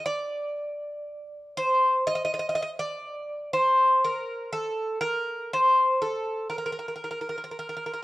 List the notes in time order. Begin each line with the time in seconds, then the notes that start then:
0.06 D5
1.57 C5
2.07 D#5
2.15 D#5
2.24 D#5
2.34 D#5
2.39 D#5
2.49 D#5
2.55 D#5
2.62 D#5
2.79 D5
3.53 C5
4.05 A#4
4.53 A4
5.01 A#4
5.53 C5
6.02 A4
6.50 A#4
6.58 A#4
6.66 A#4
6.72 A#4
6.79 A#4
6.88 A#4
6.96 A#4
7.04 A#4
7.11 A#4
7.21 A#4
7.29 A#4
7.38 A#4
7.44 A#4
7.51 A#4
7.59 A#4
7.69 A#4
7.77 A#4
7.86 A#4
7.94 A#4